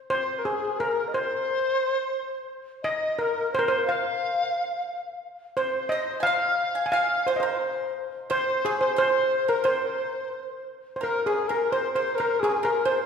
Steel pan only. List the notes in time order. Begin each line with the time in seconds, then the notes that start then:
0.10 C5
0.45 G#4
0.80 A#4
1.14 C5
2.84 D#5
3.19 A#4
3.55 C5
3.59 A#4
3.68 C5
3.89 F5
5.57 C5
5.89 D#5
6.23 F5
6.86 G#5
6.92 F5
7.27 C5
7.36 C5 D#5
8.31 C5
8.65 G#4
8.81 C5
8.98 C5
9.49 A#4
9.65 C5
10.96 C5
11.03 A#4
11.26 G#4
11.50 A#4
11.72 C5
11.95 C5
12.20 A#4
12.43 G#4
12.65 A#4
12.86 C5